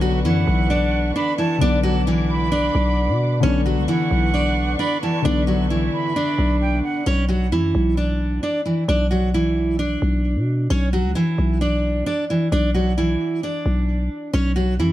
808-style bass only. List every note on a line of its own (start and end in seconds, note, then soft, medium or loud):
0.00 0.26 B1 loud
0.25 0.46 F#2 loud
0.47 1.13 B1 loud
1.61 2.71 B1 loud
2.75 3.10 B1 loud
3.09 3.41 B2 loud
3.43 3.78 B1 loud
3.77 3.88 C#2 medium
4.11 4.77 B1 loud
5.25 5.90 B1 loud
6.38 6.82 B1 loud
7.07 7.53 B1 loud
7.52 7.74 F#2 loud
7.75 8.40 B1 loud
8.88 9.98 B1 loud
10.02 10.38 B1 loud
10.36 10.68 B2 loud
10.70 11.06 B1 loud
11.04 11.15 C#2 loud
11.38 12.04 B1 loud
12.52 13.17 B1 loud
13.66 14.09 B1 loud
14.34 14.81 B1 loud
14.79 14.92 F#2 loud